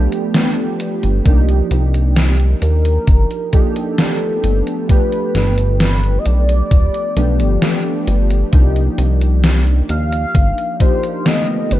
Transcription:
Already playing: synth keys F3 A3 B3 D4 G4
0.12 closed hi-hat
0.34 synth keys F3 A3 B3 D4 G4, snare, closed hi-hat
0.80 closed hi-hat
1.03 analog synth bass G1, closed hi-hat
1.24 analog synth bass C2, synth keys F3 A#3 D4 D#4 G4, kick, closed hi-hat
1.49 closed hi-hat
1.71 analog synth bass C2, closed hi-hat
1.94 closed hi-hat
2.16 snare, closed hi-hat
2.40 closed hi-hat
2.62 analog synth bass D#2, soft synth lead A#4, closed hi-hat
2.85 closed hi-hat
3.07 analog synth bass G1, kick, closed hi-hat
3.31 closed hi-hat
3.52 synth keys F3 A#3 D4 D#4 G4, soft synth lead A4, kick, closed hi-hat
3.76 closed hi-hat
3.98 synth keys F3 A3 B3 D4 G4, snare, closed hi-hat
4.44 analog synth bass G1, closed hi-hat
4.67 closed hi-hat
4.88 synth keys F3 A3 B3 D4 G4, soft synth lead B4, kick, closed hi-hat
5.12 closed hi-hat
5.35 analog synth bass G1, snare, closed hi-hat
5.58 closed hi-hat
5.80 soft synth lead B4, snare, closed hi-hat
6.03 closed hi-hat
6.19 soft synth lead D#5
6.26 analog synth bass B1, soft synth lead D5, closed hi-hat
6.49 closed hi-hat
6.71 analog synth bass D1, kick, closed hi-hat
6.94 closed hi-hat
7.16 analog synth bass B1, synth keys F3 A3 B3 D4 G4, closed hi-hat
7.40 analog synth bass G1, closed hi-hat
7.61 synth keys F3 A3 B3 D4 G4, snare, closed hi-hat
8.07 analog synth bass G1, closed hi-hat
8.30 closed hi-hat
8.51 analog synth bass C2, synth keys F3 A#3 D4 D#4 G4, kick, closed hi-hat
8.76 closed hi-hat
8.98 analog synth bass C2, closed hi-hat
9.21 closed hi-hat
9.44 snare, closed hi-hat
9.67 closed hi-hat
9.89 analog synth bass D#2, soft synth lead F5, closed hi-hat
10.12 closed hi-hat
10.35 analog synth bass G1, kick, closed hi-hat
10.58 closed hi-hat
10.80 synth keys F3 A#3 D4 D#4 G4, soft synth lead C5, kick, closed hi-hat
11.03 closed hi-hat
11.25 synth keys D3 F3 A3 B3 G4, soft synth lead D#5, snare, closed hi-hat
11.71 analog synth bass G1, soft synth lead B4, closed hi-hat

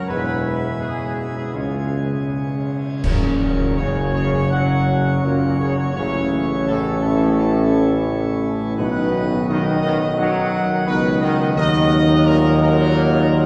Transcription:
0.07 tuba E1, trombone section G#2 G#3, pipe organ B2 G#3 E4 G#4, french horn section G#3 B3, trumpet section B4
0.80 trumpet section G#4
1.36 trumpet section G#4
1.54 tuba C#2, trombone section G#2 G#3, pipe organ C#3 C#4, french horn section G#3 C#4, trumpet section F4
3.04 tuba F#1, trombone section A#2, pipe organ C#3 F#3 C#4 C#5, french horn section F#3 C#4, trumpet section A#4, concert bass drum, crash
3.76 trombone section C#3, french horn section F#3 C#4, trumpet section C#5
4.13 trombone section C#3, trumpet section C#5
4.32 trombone section C#3, trumpet section C#5
4.50 french horn section F#3 C#4, trombone section F#3, trumpet section F#5
5.23 tuba F#1, trombone section A#2, french horn section F#3 C#4, trumpet section A#4
5.59 trombone section C#3, trumpet section C#5
5.77 trombone section C#3, trumpet section C#5
5.94 tuba A1, trombone section C#3, pipe organ E3 A3, french horn section E3 C#4, trumpet section C#5
6.67 trombone section A2, french horn section E3 C#4, trumpet section A4
7.01 trombone section A2, trumpet section A4
8.77 tuba B1, trombone section B2, french horn section D#3 D#4, pipe organ D#3 F#3 F#4 D#5, trumpet section B4
9.47 trombone section D#3, french horn section D#3 D#4, trumpet section D#5
9.82 trombone section D#3, trumpet section D#5
10.00 trombone section D#3, trumpet section D#5
10.17 french horn section D#3 D#4, trombone section F#3, trumpet section F#5
10.86 tuba C#2, trombone section B2, french horn section D#3 D#4, trumpet section B4
11.21 trombone section D#3, trumpet section D#5
11.39 trombone section D#3, trumpet section D#5
11.55 tuba D#2, trombone section D#3, french horn section F#3 D#4, pipe organ A#4, trumpet section D#5
12.26 trombone section A#2, french horn section F#3 D#4, trumpet section A#4
12.61 trombone section A#2, trumpet section A#4

